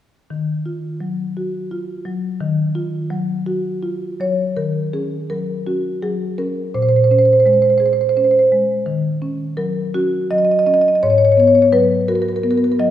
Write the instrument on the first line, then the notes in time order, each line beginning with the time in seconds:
marimba
0.30 D#3
0.66 F4
1.01 F#3
1.37 F#4
1.71 F4
2.05 F#3
2.41 D#3
2.75 F4
3.10 F#3
3.46 F#4
3.83 F4
4.20 F#3 C#5
4.57 D#3 A#4
4.93 C#4 G#4
5.30 F#3 A#4
5.67 C#4 F#4
6.02 F#3 G#4
6.38 C#4 A#4
6.74 A#2 C5
6.82 C5
6.89 C5
6.96 C5
7.04 C5
7.11 C#4 C5
7.19 C5
7.25 C5
7.33 C5
7.40 C5
7.46 G#3 C5
7.53 C5
7.62 C5
7.70 C5
7.78 G#4 C5
7.86 C5
7.93 C5
8.01 C5
8.09 C5
8.17 C#4 C5
8.24 C5
8.31 C5
8.39 C5
8.52 G#3
8.86 D#3
9.22 C#4
9.57 F#3 A#4
9.94 C#4 F#4
10.31 F#3 D#5
10.38 D#5
10.45 D#5
10.51 D#5
10.59 D#5
10.66 C#4 D#5
10.74 D#5
10.81 D#5
10.88 D#5
10.95 D#5
11.03 G#2 C#5
11.10 C#5
11.18 C#5
11.25 C#5
11.32 C#5
11.37 B3 C#5
11.47 C#5
11.55 C#5
11.62 C#5
11.72 F#3 B4
12.08 F#4 A#4
12.15 A#4
12.22 A#4
12.29 A#4
12.36 A#4
12.43 B3 A#4
12.51 A#4
12.57 A#4
12.64 A#4
12.72 A#4
12.79 F#3 D#5